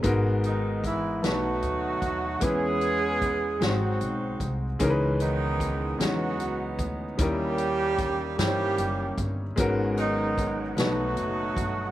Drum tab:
HH |xxxxxx|xxxxxx|xxxxxx|xxxxxx|
SD |---o--|---o--|---o--|---o--|
BD |o-o--o|o-o--o|o-o--o|o-o--o|

HH |xxxxxx|
SD |---o--|
BD |o-o--o|